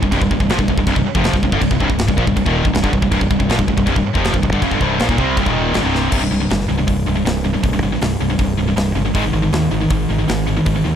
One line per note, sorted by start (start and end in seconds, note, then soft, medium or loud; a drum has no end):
0.03 0.11 C1 medium
0.03 0.11 C2 medium
0.03 0.12 G2 medium
0.03 kick medium
0.12 0.21 C1 medium
0.12 0.20 C2 medium
0.12 0.21 G2 medium
0.12 kick loud
0.12 crash medium
0.21 0.30 C1 medium
0.21 0.30 C2 medium
0.21 0.31 G2 medium
0.21 kick medium
0.31 0.40 C1 medium
0.31 0.39 C2 medium
0.31 0.40 G2 medium
0.31 kick medium
0.40 0.49 C1 medium
0.40 0.49 C2 medium
0.40 0.50 G2 medium
0.40 kick medium
0.49 0.58 A#1 medium
0.49 0.58 A#2 medium
0.49 0.59 F3 loud
0.49 snare loud
0.49 crash medium
0.59 0.68 C1 medium
0.59 0.68 C2 medium
0.59 0.68 G2 medium
0.59 kick loud
0.68 0.77 C1 medium
0.68 0.77 C2 medium
0.68 0.78 G2 medium
0.68 kick medium
0.77 0.86 C1 medium
0.77 0.86 C2 medium
0.77 0.86 G2 medium
0.77 kick medium
0.87 0.96 C1 medium
0.87 0.96 C2 medium
0.87 0.96 G2 loud
0.87 kick loud
0.87 crash medium
0.96 1.05 C1 medium
0.96 1.05 C2 medium
0.96 1.06 G2 medium
0.96 kick medium
1.06 muted fingered electric bass stroke soft
1.06 muted distorted electric guitar stroke medium
1.15 1.33 F1 medium
1.15 1.33 F2 loud
1.15 1.33 C3 medium
1.15 1.34 F3 loud
1.15 kick loud
1.24 snare loud
1.24 crash medium
1.33 1.42 C1 medium
1.33 1.42 C2 medium
1.33 1.42 G2 medium
1.33 kick medium
1.33 snare soft
1.43 1.52 C1 medium
1.43 1.52 C2 medium
1.43 1.51 G2 medium
1.43 kick medium
1.52 1.61 G1 loud
1.52 1.61 G2 medium
1.52 1.62 D3 loud
1.52 kick medium
1.62 1.71 C1 medium
1.62 1.69 C2 medium
1.62 1.70 G2 medium
1.62 kick medium
1.62 crash medium
1.71 1.80 C1 medium
1.71 1.78 C2 medium
1.71 1.79 G2 medium
1.71 kick medium
1.80 1.89 C1 loud
1.80 1.88 C2 loud
1.80 1.88 G2 loud
1.80 kick medium
1.89 2.07 C1 medium
1.89 2.05 C2 medium
1.89 2.05 G2 medium
1.89 kick medium
1.99 snare loud
1.99 crash medium
2.07 2.17 C1 medium
2.07 2.16 C2 medium
2.07 2.17 G2 medium
2.07 kick medium
2.17 2.27 A#1 medium
2.17 2.26 A#2 medium
2.17 2.26 F3 loud
2.17 kick medium
2.26 2.36 C1 medium
2.26 2.35 C2 medium
2.26 2.35 G2 medium
2.26 kick medium
2.36 2.46 C1 medium
2.36 2.45 C2 medium
2.36 2.46 G2 medium
2.36 kick medium
2.36 crash medium
2.46 2.64 D#1 loud
2.46 2.63 D#2 medium
2.46 2.64 A#2 loud
2.46 2.65 D#3 loud
2.46 kick medium
2.64 2.74 C1 medium
2.64 2.72 C2 medium
2.64 2.72 G2 medium
2.64 kick loud
2.73 2.83 C1 medium
2.73 2.82 C2 medium
2.73 2.81 G2 medium
2.73 snare loud
2.73 crash medium
2.83 2.92 G1 medium
2.83 2.92 G2 medium
2.83 2.92 D3 medium
2.83 kick loud
2.92 3.02 C1 medium
2.92 3.01 C2 medium
2.92 3.01 G2 medium
2.92 kick medium
3.02 3.11 C1 medium
3.02 3.10 C2 medium
3.02 3.11 G2 medium
3.02 kick medium
3.11 3.21 C1 medium
3.11 3.20 C2 medium
3.11 3.20 G2 loud
3.11 kick medium
3.11 crash medium
3.21 3.30 C1 medium
3.21 3.29 C2 medium
3.21 3.29 G2 medium
3.21 kick medium
3.30 3.39 C1 medium
3.30 3.39 C2 medium
3.30 3.39 G2 medium
3.30 kick medium
3.40 3.49 C1 medium
3.40 3.49 C2 medium
3.40 3.49 G2 medium
3.40 kick medium
3.49 3.58 A#1 loud
3.49 3.58 A#2 loud
3.49 3.58 F3 loud
3.49 snare loud
3.49 crash medium
3.58 3.67 C1 medium
3.58 3.66 C2 medium
3.58 3.66 G2 medium
3.58 kick medium
3.67 3.77 C1 medium
3.67 3.75 C2 medium
3.67 3.75 G2 medium
3.67 kick medium
3.77 3.86 C1 medium
3.77 3.84 C2 medium
3.77 3.86 G2 medium
3.77 kick medium
3.86 3.96 C1 medium
3.86 3.94 C2 medium
3.86 3.95 G2 loud
3.86 kick loud
3.86 crash medium
3.95 4.05 C1 medium
3.95 4.03 C2 medium
3.95 4.06 G2 medium
3.95 kick medium
4.04 muted distorted electric guitar stroke medium
4.04 muted fingered electric bass stroke soft
4.13 4.33 F1 loud
4.13 4.33 F2 medium
4.13 4.33 C3 loud
4.13 4.33 F3 loud
4.13 kick loud
4.24 snare loud
4.24 crash medium
4.33 4.42 C1 medium
4.33 4.41 C2 medium
4.33 4.41 G2 medium
4.33 kick medium
4.42 4.52 C1 medium
4.42 4.51 C2 medium
4.42 4.51 G2 medium
4.42 kick medium
4.52 4.61 G1 loud
4.52 4.61 G2 medium
4.52 4.61 D3 loud
4.52 kick medium
4.61 4.71 F#1 medium
4.61 4.70 F#2 medium
4.61 4.71 C#3 loud
4.61 kick loud
4.61 crash medium
4.71 4.80 G1 medium
4.71 4.80 G2 medium
4.71 4.80 D3 medium
4.71 kick medium
4.80 4.98 C1 loud
4.80 4.99 C2 medium
4.80 4.99 G2 medium
4.80 5.00 C3 medium
4.80 kick medium
4.99 5.08 A#1 medium
4.99 5.08 A#2 medium
4.99 5.09 F3 medium
4.99 snare loud
4.99 crash medium
5.09 5.18 D#1 medium
5.09 5.18 D#2 medium
5.09 5.18 A#2 loud
5.09 kick loud
5.18 5.36 C2 medium
5.18 5.37 C3 medium
5.18 5.37 G3 loud
5.18 5.38 C4 loud
5.18 kick medium
5.37 5.46 C1 medium
5.37 5.46 C2 medium
5.37 5.46 G2 medium
5.37 kick loud
5.37 crash medium
5.46 5.73 D#1 medium
5.46 5.74 D#2 medium
5.46 5.74 A#2 medium
5.46 5.75 D#3 loud
5.46 kick medium
5.74 5.83 G1 medium
5.74 5.82 G2 medium
5.74 5.83 D3 loud
5.74 snare loud
5.74 crash medium
5.83 6.11 C1 medium
5.83 6.10 C2 medium
5.83 6.11 G2 medium
5.83 6.12 C3 medium
5.95 snare medium
6.12 6.27 C1 medium
6.12 6.21 C2 medium
6.12 6.20 G2 medium
6.12 6.21 C3 medium
6.12 kick loud
6.12 crash loud
6.21 6.30 C2 medium
6.21 6.30 G2 medium
6.31 6.46 C1 medium
6.31 6.40 C2 medium
6.31 6.39 G2 medium
6.40 6.49 C2 medium
6.40 6.49 G2 medium
6.50 6.65 G1 medium
6.50 6.67 C2 medium
6.50 6.67 G2 medium
6.50 snare loud
6.50 open hi-hat medium
6.61 snare soft
6.69 6.84 C1 medium
6.69 6.77 C2 medium
6.69 6.76 G2 medium
6.78 6.86 C2 medium
6.78 6.86 G2 medium
6.87 7.03 C1 medium
6.87 7.05 C2 medium
6.87 7.05 G2 medium
6.87 kick loud
6.87 open hi-hat medium
7.06 7.22 C1 medium
7.06 7.15 C2 medium
7.06 7.14 G2 medium
7.16 7.24 C2 medium
7.16 7.25 G2 medium
7.25 7.55 C1 medium
7.25 7.43 C2 medium
7.25 7.43 G2 medium
7.25 snare loud
7.25 open hi-hat medium
7.44 7.53 C2 medium
7.44 7.53 G2 medium
7.54 7.62 C2 medium
7.54 7.63 G2 medium
7.63 7.78 C1 medium
7.63 7.72 C2 medium
7.63 7.72 G2 medium
7.63 kick loud
7.63 open hi-hat medium
7.73 7.82 C2 medium
7.73 7.82 G2 medium
7.82 7.97 G1 medium
7.82 7.92 C2 medium
7.82 7.91 G2 medium
7.92 8.00 C2 medium
7.92 8.00 G2 medium
8.01 8.16 C1 medium
8.01 8.19 C2 medium
8.01 8.19 G2 medium
8.01 snare loud
8.01 open hi-hat medium
8.20 8.35 C1 medium
8.20 8.29 C2 medium
8.20 8.29 G2 medium
8.30 8.38 C2 medium
8.30 8.38 G2 medium
8.39 8.54 C1 medium
8.39 8.56 C2 medium
8.39 8.56 G2 medium
8.39 kick loud
8.39 open hi-hat medium
8.58 8.72 C1 medium
8.58 8.67 C2 medium
8.58 8.67 G2 medium
8.68 8.76 C2 medium
8.68 8.76 G2 medium
8.77 8.91 C1 medium
8.77 8.94 C2 medium
8.77 8.94 G2 medium
8.77 snare loud
8.77 open hi-hat medium
8.95 9.10 G1 medium
8.95 9.04 C2 medium
8.95 9.03 G2 medium
9.05 9.14 C2 medium
9.05 9.15 G2 medium
9.14 9.30 G#1 medium
9.14 9.23 G#2 medium
9.14 9.23 D#3 medium
9.14 9.24 G#3 medium
9.14 kick loud
9.14 open hi-hat medium
9.24 9.32 G#2 medium
9.24 9.32 D#3 medium
9.33 9.48 G#1 medium
9.33 9.41 G#2 medium
9.33 9.41 D#3 medium
9.42 9.51 G#2 medium
9.42 9.51 D#3 medium
9.52 9.67 D#2 medium
9.52 9.70 G#2 medium
9.52 9.70 D#3 medium
9.52 snare loud
9.52 open hi-hat soft
9.71 9.86 G#1 medium
9.71 9.80 G#2 medium
9.71 9.80 D#3 medium
9.81 9.89 G#2 medium
9.81 9.89 D#3 medium
9.90 10.05 G#1 medium
9.90 10.07 G#2 medium
9.90 10.08 D#3 medium
9.90 kick loud
9.90 open hi-hat soft
10.09 10.24 G#1 medium
10.09 10.18 G#2 medium
10.09 10.17 D#3 medium
10.19 10.27 G#2 medium
10.19 10.28 D#3 medium
10.28 10.58 G#1 medium
10.28 10.45 G#2 medium
10.28 10.46 D#3 medium
10.28 snare loud
10.28 open hi-hat medium
10.47 10.56 G#2 medium
10.47 10.55 D#3 medium
10.57 10.65 G#2 medium
10.57 10.65 D#3 medium
10.66 10.81 G#1 medium
10.66 10.75 G#2 medium
10.66 10.75 D#3 medium
10.66 kick loud
10.66 open hi-hat medium
10.76 10.84 G#2 medium
10.76 10.84 D#3 medium
10.85 10.95 D#2 medium
10.85 10.94 G#2 medium
10.85 10.93 D#3 medium